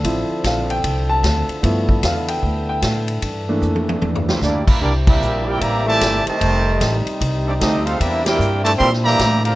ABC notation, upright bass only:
X:1
M:4/4
L:1/8
Q:"Swing" 1/4=151
K:Cmix
V:1 name="Upright bass" clef=bass
A,,, z B,,,2 C,,2 D,, z | G,,2 E,,2 D,,2 A,,2 | G,,2 F,,2 E,,2 D,, z | [K:C] C,,2 _B,,,2 A,,,2 G,,, z |
F,,,2 A,,, z C,,2 D,,2 | E,,2 G,,2 _B,,2 A,,2 |]